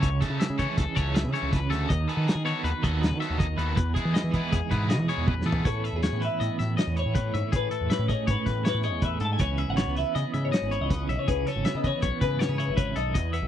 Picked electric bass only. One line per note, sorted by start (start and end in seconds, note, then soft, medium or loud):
0.03 0.18 C#2 loud
0.30 0.38 C#3 medium
0.50 0.65 C#3 medium
0.78 0.85 C#2 medium
0.97 1.26 C#2 medium
1.24 1.32 C#3 medium
1.43 1.66 C#2 medium
1.70 1.86 D2 medium
1.90 2.06 D#2 loud
2.17 2.25 D#3 medium
2.35 2.52 D#3 medium
2.64 2.72 D#2 medium
2.84 3.12 D#2 medium
3.11 3.19 D#3 medium
3.30 3.54 D#2 medium
3.58 3.74 D#2 medium
3.77 3.93 E2 loud
4.05 4.13 E3 medium
4.24 4.40 E3 medium
4.53 4.60 E2 medium
4.71 5.00 G#2 medium
5.00 5.07 E3 medium
5.18 5.42 E2 medium
5.46 5.62 E3 medium
5.65 5.89 A2 medium
5.93 6.09 E2 medium
6.12 6.28 A2 medium
6.41 6.48 A2 medium
6.60 6.75 A2 medium
6.87 7.03 E2 medium
7.06 7.29 A2 medium
7.34 7.42 G#2 medium
7.53 7.69 A2 medium
7.81 7.89 E2 medium
7.99 8.15 A2 medium
8.28 8.36 G#2 medium
8.46 8.70 A2 medium
8.74 8.93 A2 medium
8.93 9.17 E2 medium
9.21 9.37 G#2 medium
9.40 9.64 C#2 medium
9.68 9.84 G#1 medium
9.87 10.03 C#2 medium
10.16 10.23 C#3 medium
10.34 10.50 C#3 medium
10.62 10.78 G#1 medium
10.81 11.05 C#2 medium
11.08 11.16 B1 medium
11.28 11.44 C#2 medium
11.56 11.64 G#1 medium
11.75 11.91 C#3 medium
12.03 12.11 B1 medium
12.21 12.45 C#3 medium
12.49 12.69 C#3 medium
12.68 12.92 G#1 medium
12.96 13.12 B1 medium
13.15 13.39 E2 medium
13.42 13.48 B1 medium